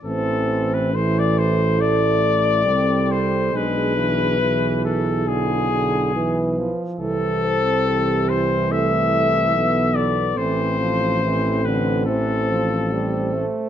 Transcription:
X:1
M:4/4
L:1/16
Q:1/4=70
K:Am
V:1 name="Flugelhorn"
A3 B c d c2 d6 c2 | B6 A2 ^G6- G z | A6 c2 e6 d2 | c6 B2 A6- A z |]
V:2 name="French horn section"
c4 A8 A4 | ^G4 G8 B4 | A2 c2 G4 A8- | A4 A4 c4 c4 |]
V:3 name="Euphonium"
C4 E8 C4 | D4 E8 E2 z2 | C8 A,4 B,4 | C4 C8- C2 z2 |]
V:4 name="Trombone" clef=bass
E,4 E,4 A,4 G,4 | ^G,2 E,2 E,4 D,2 D,2 E,2 F,2 | E,2 z2 E,12 | E,2 F,2 E,2 D,2 E,2 F,2 G,2 A,2 |]
V:5 name="Tuba" clef=bass
A,,,12 C,,4 | B,,,12- B,,,2 z2 | C,,12 B,,,4 | A,,,12- A,,,2 z2 |]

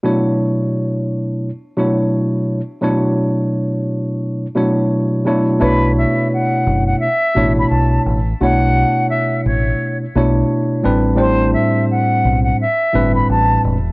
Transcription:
X:1
M:4/4
L:1/16
Q:"Swing 16ths" 1/4=86
K:Bm
V:1 name="Flute"
z16 | z16 | B2 e2 f3 f e3 b a2 z2 | f4 e2 c3 z6 z |
=c2 e2 f3 f e3 b a2 z2 |]
V:2 name="Tine electric piano"
[B,,F,A,DEc]8 z2 [B,,F,A,DEc]4 z2 | [B,,F,A,DEc]8- [B,,F,A,DEc]2 [B,,F,A,DEc]4 [B,,F,A,DEc]2 | [B,,A,DEc]8 z2 [B,,A,DEc]4 z2 | [B,,A,DEc]8- [B,,A,DEc]2 [B,,A,DEc]4 [A,,G,=CDB]2 |
[A,,G,=CD=c]8 z2 [A,,G,CDB]4 z2 |]
V:3 name="Fingered electric bass" clef=bass
z16 | z16 | B,,,3 z3 F,,,2 z2 A,,,2 B,,,2 A,,,2 | B,,,3 z3 A,,,2 z2 B,,,2 z2 A,,,2- |
A,,,3 z3 B,,,2 z2 G,,,2 A,,,2 E,,,2 |]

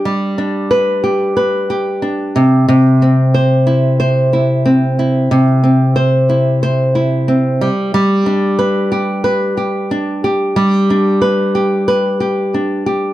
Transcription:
X:1
M:4/4
L:1/8
Q:"Swing 16ths" 1/4=91
K:G
V:1 name="Nylon-string guitar"
[G,DGB] D B G B G D C, | C, C c E c E C E | C, C c E c E C G, | G, D B G B G D G |
G, D B G B G D G |]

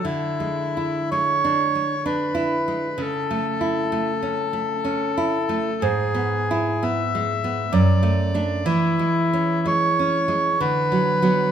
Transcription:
X:1
M:3/4
L:1/8
Q:1/4=63
K:Emix
V:1 name="Bandoneon"
E2 c2 B2 | A6 | G2 e2 d2 | E2 c2 B2 |]
V:2 name="Nylon-string guitar"
(3D, G, E (3G, D G, (3D E G, | (3C, A, E (3A, C A, (3C E A, | (3G,, B, E (3B, G, B, (3F,, A, [A,D] | (3E, G, C (3G, C G, (3D, F, [F,B,] |]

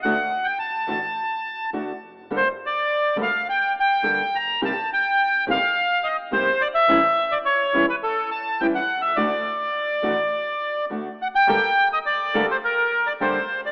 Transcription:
X:1
M:4/4
L:1/16
Q:1/4=105
K:Gm
V:1 name="Bandoneon"
^f3 g a8 z4 | c2 d4 f2 g2 g4 b2 | a2 g4 f4 e2 c2 d =e- | =e3 d ^c3 =B A2 a2 g ^f2 e |
d12 z2 ^f g- | g3 e d3 c B3 d c3 d |]
V:2 name="Bandoneon"
z16 | z16 | z16 | z16 |
z16 | [B,GA]2 z4 [B,GA]2 z4 [B,GA]2 z2 |]
V:3 name="Nylon-string guitar"
[D,A,D^F]2 z4 [D,A,DF]2 z4 [D,A,DF]2 z2 | [D,G,B,DA]2 z4 [D,G,B,DA]2 z4 [D,G,B,DA]2 z2 | [C,G,B,EG]2 z4 [C,G,B,EG]2 z4 [C,G,B,EG]2 z2 | [=E,G,^C=E]2 z4 [E,G,CE]2 z4 [E,G,CE]2 z2 |
[D,A,D^F]2 z4 [D,A,DF]2 z4 [D,A,DF]2 z2 | [D,G,B,DA]2 z4 [D,G,B,DA]2 z4 [D,G,B,DA]2 z2 |]
V:4 name="Double bass" clef=bass
D,,2 z4 A,,,2 z4 D,,2 F,,,2 | G,,,2 z4 D,,2 z4 G,,,2 F,,,2 | G,,,2 z4 G,,,2 z4 G,,,2 z2 | A,,,2 z4 =E,,,2 z4 A,,,2 C,,2 |
D,,2 z4 A,,,2 z4 D,,2 z2 | G,,,2 z4 D,,2 z4 G,,,2 ^C,,2 |]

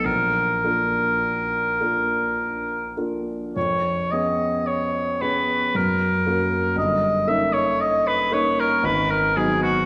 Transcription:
X:1
M:3/4
L:1/16
Q:1/4=55
K:Bbphr
V:1 name="Oboe"
B8- B2 z2 | d2 e2 d2 c2 B4 | e2 _f d e c d B c B A G |]
V:2 name="Grand piano"
B,,,2 [B,=DF]4 [B,DF]4 [B,DF]2 | F,,2 [CDA]4 [CDA]2 G,,2 [B,DG]2 | =G,,,2 [B,DE]4 [B,DE]2 A,,,2 [_G,CE]2 |]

